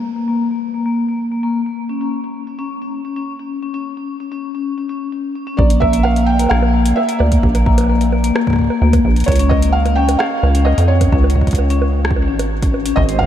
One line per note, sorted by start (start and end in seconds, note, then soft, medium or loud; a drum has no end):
0.16 0.25 A#3 medium
0.28 0.39 A#3 loud
0.51 0.62 A#3 medium
0.74 0.83 A#3 medium
0.86 0.97 A#3 loud
1.09 1.20 A#3 medium
1.32 1.40 A#3 medium
1.43 1.54 A#3 loud
1.66 1.77 A#3 medium
1.89 1.98 C#4 medium
2.01 2.12 C#4 medium
2.24 2.35 C#4 medium
2.47 2.56 C#4 medium
2.59 2.70 C#4 loud
2.82 2.93 C#4 medium
3.05 3.13 C#4 medium
3.16 3.27 C#4 medium
3.39 3.50 C#4 medium
3.63 3.71 C#4 medium
3.74 3.85 C#4 loud
3.97 4.08 C#4 medium
4.20 4.29 C#4 medium
4.32 4.43 C#4 medium
4.55 4.66 C#4 medium
4.78 4.87 C#4 medium
4.89 5.00 C#4 loud
5.12 5.23 C#4 medium
5.36 5.44 C#4 medium
5.47 5.58 C#4 loud
5.57 6.47 A#1 loud
5.57 5.70 A#3 medium
5.57 5.82 D5 medium
5.57 kick loud
5.70 closed hi-hat medium
5.80 5.90 A#3 medium
5.80 6.05 E5 loud
5.80 kick loud
5.80 high bongo medium
5.93 6.04 A#3 loud
5.93 closed hi-hat medium
6.03 6.28 F5 loud
6.03 high bongo medium
6.16 6.27 A#3 medium
6.16 closed hi-hat soft
6.26 6.51 G5 loud
6.39 6.48 A#3 medium
6.39 closed hi-hat medium
6.39 high bongo soft
6.42 high bongo soft
6.44 high bongo soft
6.46 high bongo soft
6.49 6.94 A#1 medium
6.49 6.62 A#3 loud
6.49 6.98 F5 loud
6.49 cross-stick loud
6.49 high bongo soft
6.63 high bongo medium
6.74 6.85 A#3 medium
6.86 closed hi-hat medium
6.96 7.06 A#3 medium
6.96 7.18 E5 loud
6.96 high bongo medium
7.09 7.20 A#3 loud
7.09 closed hi-hat medium
7.19 7.39 D2 medium
7.19 9.00 D5 medium
7.19 high bongo medium
7.32 7.43 A#3 medium
7.32 kick medium
7.32 closed hi-hat medium
7.43 8.32 A#1 loud
7.43 kick loud
7.55 7.63 A#3 medium
7.55 closed hi-hat medium
7.55 high bongo medium
7.66 7.77 A#3 loud
7.66 kick loud
7.78 closed hi-hat medium
7.78 high bongo medium
7.81 high bongo medium
7.84 high bongo medium
7.87 8.00 A#3 medium
7.87 high bongo soft
7.89 high bongo soft
7.92 high bongo soft
7.95 high bongo soft
8.01 closed hi-hat soft
8.12 8.21 A#3 medium
8.12 high bongo medium
8.24 8.35 A#3 loud
8.24 closed hi-hat medium
8.36 cross-stick loud
8.36 high bongo medium
8.47 8.58 A#3 medium
8.47 kick loud
8.50 kick loud
8.53 kick medium
8.56 kick medium
8.59 kick medium
8.62 kick soft
8.64 kick soft
8.67 8.79 A#3 medium
8.67 kick soft
8.67 high bongo medium
8.82 9.00 D2 loud
8.82 8.93 A#3 loud
8.93 kick loud
8.93 closed hi-hat medium
8.93 high bongo medium
9.05 9.24 A#1 medium
9.05 9.16 A#3 medium
9.16 closed hi-hat soft
9.20 closed hi-hat soft
9.24 9.36 C#4 medium
9.24 9.51 C#5 loud
9.24 closed hi-hat soft
9.28 10.17 C#2 loud
9.28 kick loud
9.28 closed hi-hat soft
9.28 high bongo medium
9.32 closed hi-hat medium
9.36 9.50 C#4 loud
9.36 closed hi-hat medium
9.39 closed hi-hat medium
9.49 9.74 D#5 loud
9.49 kick loud
9.49 high bongo medium
9.62 9.73 C#4 medium
9.62 closed hi-hat medium
9.72 9.95 F5 loud
9.86 9.94 C#4 medium
9.86 closed hi-hat soft
9.86 high bongo medium
9.96 10.08 C#4 loud
9.96 10.20 G5 loud
10.09 closed hi-hat medium
10.09 high bongo medium
10.19 10.31 C#4 medium
10.19 10.67 F5 loud
10.19 cross-stick loud
10.43 10.74 C#2 loud
10.43 10.52 C#4 medium
10.43 high bongo soft
10.55 10.66 C#4 loud
10.55 closed hi-hat medium
10.65 10.89 D#5 loud
10.65 high bongo medium
10.78 11.09 F2 medium
10.78 10.89 C#4 medium
10.78 closed hi-hat medium
10.88 12.69 C#5 loud
11.01 11.10 C#4 medium
11.01 kick medium
11.01 closed hi-hat medium
11.01 high bongo medium
11.12 12.29 C#2 loud
11.12 11.23 C#4 loud
11.12 kick loud
11.24 high bongo medium
11.30 closed hi-hat medium
11.36 11.47 C#4 medium
11.36 kick medium
11.41 kick medium
11.47 kick medium
11.47 closed hi-hat soft
11.51 kick loud
11.51 closed hi-hat soft
11.55 11.67 C#4 medium
11.55 closed hi-hat medium
11.55 high bongo medium
11.70 11.81 C#4 loud
11.70 closed hi-hat soft
11.82 high bongo medium
11.93 12.04 C#4 medium
12.05 cross-stick loud
12.11 kick loud
12.16 12.25 C#4 medium
12.16 high bongo medium
12.28 12.94 G#1 loud
12.28 12.33 C#4 medium
12.39 closed hi-hat medium
12.39 high bongo medium
12.63 12.71 C#4 medium
12.63 kick loud
12.63 closed hi-hat medium
12.74 high bongo soft
12.86 12.97 C#4 loud
12.86 closed hi-hat medium
12.96 13.26 G#1 loud
12.96 13.26 C4 medium
12.96 13.26 C5 medium
12.96 13.01 D#5 loud
12.96 kick loud
13.09 13.20 G#3 medium
13.09 closed hi-hat medium
13.19 13.26 F5 loud
13.19 kick medium
13.19 high bongo medium
13.23 kick medium